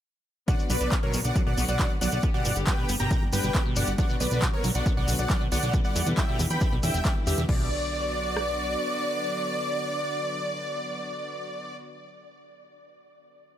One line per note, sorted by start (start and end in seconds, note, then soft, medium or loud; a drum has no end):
0.48 0.55 B2 loud
0.48 0.63 D3 medium
0.48 0.63 F#3 medium
0.48 0.63 B3 medium
0.48 0.63 F#4 medium
0.48 0.63 D5 medium
0.48 0.63 F#5 loud
0.48 kick loud
0.48 closed hi-hat medium
0.48 shekere medium
0.59 shekere soft
0.70 0.77 B1 medium
0.70 0.77 F#3 medium
0.70 0.93 B4 medium
0.70 0.93 D5 loud
0.70 open hi-hat loud
0.70 shekere medium
0.81 0.88 B1 medium
0.81 0.88 B2 medium
0.81 0.96 D3 medium
0.81 0.96 F#3 medium
0.81 0.96 B3 medium
0.81 0.96 F#4 medium
0.81 closed hi-hat medium
0.81 shekere soft
0.92 0.99 B3 loud
0.92 kick loud
0.92 clap loud
0.92 closed hi-hat medium
0.92 shekere medium
1.03 1.13 B2 loud
1.03 1.18 D3 medium
1.03 1.18 F#3 medium
1.03 1.18 B3 medium
1.03 1.18 F#4 medium
1.03 1.18 A#4 medium
1.03 1.18 C#5 medium
1.13 1.21 B1 medium
1.13 1.21 B2 loud
1.13 open hi-hat loud
1.13 shekere loud
1.25 1.32 B1 medium
1.25 1.40 D3 medium
1.25 1.40 F#3 medium
1.25 1.40 B3 medium
1.25 1.40 F#4 medium
1.25 1.40 D5 medium
1.25 1.40 F#5 medium
1.25 closed hi-hat medium
1.25 shekere soft
1.36 1.43 F#3 medium
1.36 kick loud
1.36 closed hi-hat medium
1.36 shekere soft
1.47 1.54 B1 medium
1.47 1.53 B2 medium
1.47 1.62 D5 medium
1.47 1.62 F#5 medium
1.57 1.65 B1 medium
1.57 1.73 D3 medium
1.57 1.73 F#3 medium
1.57 1.73 B3 medium
1.57 1.64 B3 loud
1.57 1.73 F#4 medium
1.57 open hi-hat loud
1.57 shekere loud
1.68 1.76 B1 medium
1.68 1.79 B2 loud
1.68 1.92 D5 medium
1.68 1.92 F#5 loud
1.68 closed hi-hat medium
1.68 shekere soft
1.79 1.86 B2 loud
1.79 1.95 D3 medium
1.79 1.95 F#3 medium
1.79 1.95 B3 medium
1.79 1.95 F#4 medium
1.79 kick loud
1.79 clap loud
1.79 closed hi-hat medium
1.79 shekere medium
2.01 2.09 B1 loud
2.01 2.17 D3 medium
2.01 2.17 F#3 medium
2.01 2.08 F#3 medium
2.01 2.17 B3 medium
2.01 2.17 F#4 medium
2.01 2.24 D5 medium
2.01 2.24 F#5 loud
2.01 open hi-hat loud
2.01 shekere medium
2.12 2.20 B1 medium
2.12 2.19 B2 medium
2.12 closed hi-hat medium
2.12 shekere soft
2.23 2.38 D3 medium
2.23 2.38 G3 medium
2.23 2.38 B3 medium
2.23 2.30 B3 loud
2.23 2.38 G4 medium
2.23 kick loud
2.23 closed hi-hat medium
2.23 shekere soft
2.34 2.45 B2 loud
2.34 2.57 D5 medium
2.34 2.57 F#5 loud
2.34 shekere soft
2.45 2.52 G1 loud
2.45 2.52 B2 loud
2.45 open hi-hat loud
2.45 shekere medium
2.56 2.63 G1 medium
2.56 2.71 D3 medium
2.56 2.71 G3 medium
2.56 2.71 B3 medium
2.56 2.71 G4 medium
2.56 closed hi-hat medium
2.56 shekere soft
2.67 2.74 G3 medium
2.67 2.90 B4 medium
2.67 2.90 G5 medium
2.67 kick loud
2.67 clap loud
2.67 closed hi-hat medium
2.67 shekere soft
2.78 2.85 B2 medium
2.78 2.93 D3 medium
2.78 2.93 G3 medium
2.78 2.93 B3 medium
2.78 2.93 G4 medium
2.89 2.96 G1 medium
2.89 2.96 B3 loud
2.89 open hi-hat loud
2.89 shekere loud
3.00 3.07 G1 medium
3.00 3.10 B2 loud
3.00 3.15 D3 medium
3.00 3.15 G3 medium
3.00 3.15 B3 medium
3.00 3.15 G4 medium
3.00 3.23 G5 medium
3.00 3.23 A#5 loud
3.00 closed hi-hat medium
3.00 shekere soft
3.11 kick loud
3.11 closed hi-hat medium
3.11 shekere medium
3.22 3.29 G1 medium
3.33 3.40 G1 loud
3.33 3.48 D3 medium
3.33 3.48 G3 medium
3.33 3.40 G3 medium
3.33 3.48 B3 medium
3.33 3.48 G4 medium
3.33 3.63 B4 medium
3.33 3.63 G5 loud
3.33 open hi-hat loud
3.33 shekere loud
3.43 3.51 G1 medium
3.43 3.51 B2 medium
3.43 closed hi-hat medium
3.43 shekere soft
3.54 3.70 D3 medium
3.54 3.70 G3 medium
3.54 3.70 B3 medium
3.54 3.62 B3 loud
3.54 3.70 G4 medium
3.54 kick loud
3.54 clap loud
3.54 closed hi-hat medium
3.54 shekere medium
3.66 3.76 B2 loud
3.76 3.84 G1 loud
3.76 3.83 B2 loud
3.76 3.92 D3 medium
3.76 3.92 G3 medium
3.76 3.92 B3 medium
3.76 3.92 G4 medium
3.76 3.92 D5 medium
3.76 3.92 F#5 medium
3.76 open hi-hat loud
3.76 shekere loud
3.87 3.95 G1 medium
3.87 closed hi-hat medium
3.87 shekere soft
3.98 4.14 D3 medium
3.98 4.14 F#3 medium
3.98 4.05 F#3 medium
3.98 4.14 B3 medium
3.98 4.14 F#4 medium
3.98 4.14 D5 medium
3.98 4.14 F#5 loud
3.98 kick loud
3.98 closed hi-hat medium
3.98 shekere medium
4.09 4.16 B2 medium
4.09 shekere soft
4.20 4.28 B1 medium
4.20 4.27 B3 loud
4.20 4.43 B4 medium
4.20 4.43 D5 loud
4.20 open hi-hat loud
4.20 shekere loud
4.31 4.39 B1 medium
4.31 4.42 B2 loud
4.31 4.46 D3 medium
4.31 4.46 F#3 medium
4.31 4.46 B3 medium
4.31 4.46 F#4 medium
4.31 closed hi-hat medium
4.31 shekere soft
4.42 4.49 B2 loud
4.42 kick loud
4.42 clap loud
4.42 closed hi-hat medium
4.42 shekere medium
4.53 4.68 D3 medium
4.53 4.69 F#3 medium
4.53 4.68 B3 medium
4.53 4.68 F#4 medium
4.53 4.69 A#4 medium
4.53 4.69 C#5 medium
4.64 4.71 B1 loud
4.64 4.71 F#3 medium
4.64 open hi-hat loud
4.64 shekere medium
4.74 4.82 B1 medium
4.74 4.82 B2 medium
4.74 4.90 D3 medium
4.74 4.90 F#3 medium
4.74 4.90 B3 medium
4.74 4.90 F#4 medium
4.74 4.90 D5 medium
4.74 4.90 F#5 medium
4.74 closed hi-hat medium
4.74 shekere soft
4.86 4.93 B3 loud
4.86 kick loud
4.86 closed hi-hat medium
4.86 shekere medium
4.97 5.04 B1 medium
4.97 5.07 B2 loud
4.97 5.12 D5 medium
4.97 5.12 F#5 medium
5.08 5.15 B1 loud
5.08 5.15 B2 loud
5.08 5.23 D3 medium
5.08 5.23 F#3 medium
5.08 5.23 B3 medium
5.08 5.23 F#4 medium
5.08 open hi-hat loud
5.08 shekere loud
5.19 5.26 B1 medium
5.19 5.42 D5 medium
5.19 5.42 F#5 loud
5.19 closed hi-hat medium
5.19 shekere soft
5.30 5.45 D3 medium
5.30 5.45 F#3 medium
5.30 5.37 F#3 medium
5.30 5.45 B3 medium
5.30 5.45 F#4 medium
5.30 kick loud
5.30 clap loud
5.30 closed hi-hat medium
5.30 shekere medium
5.41 5.48 B2 medium
5.52 5.59 B1 loud
5.52 5.67 D3 medium
5.52 5.67 F#3 medium
5.52 5.67 B3 medium
5.52 5.59 B3 loud
5.52 5.67 F#4 medium
5.52 5.75 D5 medium
5.52 5.75 F#5 loud
5.52 open hi-hat loud
5.52 shekere medium
5.63 5.70 B1 medium
5.63 5.73 B2 loud
5.63 closed hi-hat medium
5.63 shekere soft
5.73 5.80 B2 loud
5.73 5.89 D3 medium
5.73 5.89 G3 medium
5.73 5.89 B3 medium
5.73 5.89 E4 medium
5.73 kick loud
5.73 closed hi-hat medium
5.73 shekere medium
5.84 6.08 D5 medium
5.84 6.08 F#5 loud
5.84 shekere soft
5.96 6.03 E2 medium
5.96 6.02 E3 medium
5.96 open hi-hat loud
5.96 shekere medium
6.06 6.14 E2 medium
6.06 6.13 B2 medium
6.06 6.22 D3 medium
6.06 6.22 G3 medium
6.06 6.22 B3 medium
6.06 6.22 E4 medium
6.06 closed hi-hat medium
6.06 shekere soft
6.17 6.24 G3 loud
6.17 6.41 E5 medium
6.17 6.41 G5 loud
6.17 kick loud
6.17 clap loud
6.17 closed hi-hat medium
6.17 shekere medium
6.28 6.39 B2 loud
6.28 6.44 D3 medium
6.28 6.44 G3 medium
6.28 6.44 B3 medium
6.28 6.44 E4 medium
6.39 6.47 E2 medium
6.39 6.46 B2 loud
6.39 open hi-hat loud
6.39 shekere medium
6.50 6.58 E2 medium
6.50 6.65 D3 medium
6.50 6.65 G3 medium
6.50 6.65 B3 medium
6.50 6.65 E4 medium
6.50 6.73 G5 medium
6.50 6.73 B5 loud
6.50 closed hi-hat medium
6.50 shekere soft
6.61 6.68 E3 medium
6.61 kick loud
6.61 closed hi-hat medium
6.61 shekere medium
6.72 6.79 B1 medium
6.72 6.79 B2 medium
6.83 6.90 E2 medium
6.83 6.90 B2 medium
6.83 6.98 D3 medium
6.83 6.98 G3 medium
6.83 6.98 B3 medium
6.83 6.98 E4 medium
6.83 7.14 E5 medium
6.83 7.14 G5 loud
6.83 open hi-hat loud
6.83 shekere medium
6.94 7.01 E1 medium
6.94 6.98 E3 loud
6.94 closed hi-hat medium
6.94 shekere soft
7.05 7.20 D3 medium
7.05 7.20 G3 medium
7.05 7.20 B3 medium
7.05 7.12 B3 medium
7.05 7.20 E4 medium
7.05 kick loud
7.05 clap loud
7.05 closed hi-hat medium
7.05 shekere medium
7.27 7.34 E2 loud
7.27 7.42 D3 medium
7.27 7.34 D3 medium
7.27 7.42 G3 medium
7.27 7.42 B3 medium
7.27 7.42 E4 medium
7.27 7.42 G4 medium
7.27 7.42 E5 medium
7.27 open hi-hat loud
7.27 shekere medium
7.38 7.45 E2 medium
7.38 7.45 B2 medium
7.38 closed hi-hat medium
7.38 shekere soft
7.49 8.76 B1 loud
7.49 7.69 B2 loud
7.49 11.75 D3 medium
7.49 11.75 F#3 medium
7.49 11.75 B3 medium
7.49 11.75 F#4 medium
7.49 11.75 D5 loud
7.49 kick loud
7.49 crash medium
8.37 cross-stick medium